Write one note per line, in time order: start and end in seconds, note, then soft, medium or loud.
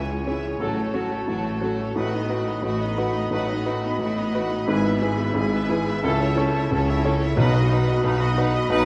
0.00 0.53 C#2 soft
0.00 0.63 C#2 medium
0.00 0.63 C#3 soft
0.00 0.27 C#4 soft
0.00 0.28 E4 soft
0.00 0.62 E4 soft
0.00 0.28 G#4 soft
0.00 1.92 C#5 soft
0.00 0.57 G#5 medium
0.09 0.27 G#3 soft
0.09 0.27 C#4 soft
0.09 0.27 C#5 soft
0.26 0.44 E3 soft
0.26 0.58 C#4 soft
0.26 0.44 E4 soft
0.26 0.58 E4 soft
0.26 0.58 G#4 soft
0.26 0.44 E5 soft
0.44 0.61 G#3 soft
0.44 0.61 C#4 soft
0.44 0.61 C#5 soft
0.60 0.93 A1 soft
0.60 1.20 A1 medium
0.60 0.93 A2 medium
0.60 1.20 A2 medium
0.60 0.76 F#3 soft
0.60 0.85 F#3 medium
0.60 0.85 C#4 medium
0.60 5.37 F#4 soft
0.60 0.77 F#4 soft
0.60 0.84 A4 medium
0.60 0.77 A4 soft
0.60 1.97 A5 soft
0.77 0.94 A3 soft
0.77 0.95 A4 soft
0.77 0.94 C#5 soft
0.94 1.11 F#3 soft
0.94 1.25 C#4 soft
0.94 1.11 F#4 soft
0.94 1.25 F#4 soft
0.94 1.25 A4 soft
0.94 1.12 A4 soft
1.11 1.28 A3 soft
1.11 1.29 A4 soft
1.11 1.29 C#5 soft
1.27 1.61 A1 soft
1.27 1.88 A1 medium
1.27 1.61 A2 soft
1.27 1.88 A2 medium
1.27 1.44 F#3 soft
1.27 1.45 F#4 soft
1.27 1.45 A4 soft
1.45 1.62 A3 soft
1.45 1.63 A4 soft
1.45 1.63 C#5 soft
1.61 1.79 F#3 soft
1.61 1.92 C#4 soft
1.61 1.93 F#4 soft
1.61 1.80 F#4 soft
1.61 1.79 A4 soft
1.61 1.93 A4 soft
1.78 1.94 A3 soft
1.78 1.96 A4 soft
1.78 1.97 C#5 soft
1.96 2.29 A1 medium
1.96 2.56 A1 medium
1.96 2.29 A2 medium
1.96 2.56 A2 medium
1.96 2.19 F#3 medium
1.96 2.12 A3 soft
1.96 2.20 D#4 medium
1.96 2.12 F#4 medium
1.96 2.20 B4 soft
1.96 4.64 D#5 medium
1.96 2.12 F#5 soft
1.96 6.01 B5 medium
2.13 2.30 B3 soft
2.13 2.30 D#4 soft
2.13 2.30 D#5 soft
2.29 2.47 A3 soft
2.29 2.60 D#4 soft
2.29 2.60 F#4 soft
2.29 2.47 F#4 soft
2.29 2.60 B4 soft
2.29 2.48 F#5 soft
2.47 2.64 B3 soft
2.47 2.64 D#4 soft
2.47 2.64 D#5 soft
2.62 2.96 A1 medium
2.62 3.24 A1 medium
2.62 2.96 A2 medium
2.62 3.24 A2 medium
2.62 2.79 A3 soft
2.62 2.80 F#4 soft
2.62 2.80 F#5 soft
2.81 2.98 B3 soft
2.81 2.98 D#4 soft
2.81 2.98 D#5 soft
2.97 3.15 A3 soft
2.97 3.28 D#4 soft
2.97 3.28 F#4 medium
2.97 3.15 F#4 soft
2.97 3.29 B4 soft
2.97 3.15 F#5 soft
3.15 3.32 B3 soft
3.15 3.32 D#4 soft
3.15 3.32 D#5 soft
3.31 3.65 A1 medium
3.31 3.92 A1 medium
3.31 3.65 A2 medium
3.31 3.93 A2 medium
3.31 3.56 F#3 medium
3.31 3.48 A3 soft
3.31 3.55 D#4 medium
3.31 3.49 F#4 soft
3.31 3.55 B4 medium
3.31 3.48 F#5 medium
3.49 3.67 B3 soft
3.49 3.68 D#4 soft
3.49 3.66 D#5 soft
3.65 3.84 A3 soft
3.65 3.96 D#4 soft
3.65 3.96 F#4 soft
3.65 3.85 F#4 soft
3.65 3.97 B4 medium
3.65 3.84 F#5 soft
3.84 4.01 B3 soft
3.84 4.01 D#4 soft
3.84 4.00 D#5 soft
3.99 4.33 A1 medium
3.99 4.60 A1 medium
3.99 4.33 A2 soft
3.99 4.60 A2 medium
3.99 4.17 A3 medium
3.99 4.16 F#4 soft
3.99 4.17 F#5 soft
4.17 4.34 B3 soft
4.17 4.34 D#4 soft
4.17 4.35 D#5 soft
4.33 4.51 A3 medium
4.33 4.65 D#4 medium
4.33 4.51 F#4 soft
4.33 4.65 F#4 medium
4.33 4.65 B4 medium
4.33 4.52 F#5 soft
4.50 4.69 B3 soft
4.50 4.67 D#4 soft
4.50 4.69 D#5 soft
4.66 5.01 G#1 medium
4.66 5.28 G#1 medium
4.66 5.01 G#2 medium
4.66 5.28 G#2 medium
4.66 4.92 E3 medium
4.66 4.84 G#3 medium
4.66 4.93 E4 medium
4.66 4.83 G#4 medium
4.66 4.91 B4 medium
4.66 7.04 E5 medium
4.66 4.84 G#5 medium
4.83 5.02 B3 soft
4.83 5.01 B4 soft
4.83 5.02 E5 soft
5.01 5.19 G#3 medium
5.01 5.33 E4 medium
5.01 5.19 G#4 medium
5.01 5.33 G#4 soft
5.01 5.33 B4 medium
5.01 5.19 G#5 soft
5.17 5.36 B3 medium
5.17 5.35 B4 medium
5.17 5.36 E5 medium
5.34 5.68 G#1 medium
5.34 5.97 G#1 medium
5.34 5.68 G#2 medium
5.34 5.97 G#2 medium
5.34 5.52 G#3 medium
5.34 7.09 E4 medium
5.34 5.51 G#4 medium
5.34 5.52 G#5 soft
5.51 5.70 B3 medium
5.51 5.69 B4 medium
5.51 5.71 E5 medium
5.68 5.87 G#3 medium
5.68 6.01 E4 medium
5.68 5.86 G#4 medium
5.68 6.01 G#4 medium
5.68 6.02 B4 medium
5.68 5.87 G#5 medium
5.85 6.04 B3 medium
5.85 6.03 B4 medium
5.85 6.04 E5 medium
6.03 6.37 C#2 medium
6.03 6.63 C#2 medium
6.03 6.37 C#3 medium
6.03 6.64 C#3 medium
6.03 6.28 E3 medium
6.03 6.20 C#4 medium
6.03 6.28 E4 medium
6.03 6.20 A4 medium
6.03 6.28 A4 medium
6.03 6.20 C#5 medium
6.03 7.14 A5 medium
6.20 6.38 E4 medium
6.20 6.38 C#5 medium
6.20 6.39 E5 medium
6.36 6.55 C#4 medium
6.36 6.67 E4 medium
6.36 6.54 A4 medium
6.36 6.68 A4 medium
6.36 6.68 C#5 medium
6.36 6.55 C#5 medium
6.55 6.71 E4 medium
6.55 6.72 C#5 medium
6.55 6.72 E5 medium
6.70 7.04 C#2 medium
6.70 7.30 C#2 medium
6.70 7.03 C#3 medium
6.70 7.30 C#3 medium
6.70 6.87 C#4 medium
6.70 6.86 A4 medium
6.70 6.88 C#5 medium
6.86 7.05 E4 medium
6.86 7.04 C#5 medium
6.86 7.06 E5 medium
7.04 7.22 C#4 medium
7.04 7.34 E4 medium
7.04 7.21 A4 medium
7.04 7.35 A4 medium
7.04 7.35 C#5 medium
7.04 7.22 C#5 medium
7.20 7.38 E4 medium
7.20 7.38 C#5 medium
7.20 7.39 E5 medium
7.36 7.70 B1 medium
7.36 7.97 B1 medium
7.36 7.70 B2 medium
7.36 8.34 B2 medium
7.36 7.98 B2 medium
7.36 7.60 F#3 medium
7.36 7.61 D#4 medium
7.36 7.54 D#4 medium
7.36 8.85 F#4 medium
7.36 7.53 B4 medium
7.36 7.61 B4 medium
7.36 8.85 D#5 medium
7.36 7.54 F#5 medium
7.36 8.85 B5 medium
7.54 7.71 F#4 medium
7.54 7.71 D#5 medium
7.54 7.72 D#5 medium
7.70 7.88 D#4 medium
7.70 8.02 F#4 medium
7.70 7.88 B4 medium
7.70 8.02 B4 medium
7.70 8.02 D#5 medium
7.70 7.89 F#5 medium
7.87 8.05 F#4 medium
7.87 8.05 D#5 medium
7.87 8.06 D#5 medium
8.04 8.37 B1 medium
8.04 8.64 B1 medium
8.04 8.37 B2 medium
8.04 8.64 B2 medium
8.04 8.20 D#4 medium
8.04 8.20 B4 medium
8.04 8.21 F#5 medium
8.20 8.38 F#4 medium
8.20 8.38 D#5 medium
8.20 8.39 D#5 medium
8.37 8.54 D#4 medium
8.37 8.68 F#4 medium
8.37 8.68 B4 medium
8.37 8.55 B4 medium
8.37 8.68 D#5 medium
8.37 8.56 F#5 medium
8.54 8.71 F#4 medium
8.54 8.71 D#5 medium
8.54 8.72 D#5 medium
8.69 8.85 B1 medium
8.69 8.85 B2 medium
8.69 8.85 F#3 medium
8.69 8.85 D#4 medium
8.69 8.85 B4 medium
8.74 8.85 F#5 medium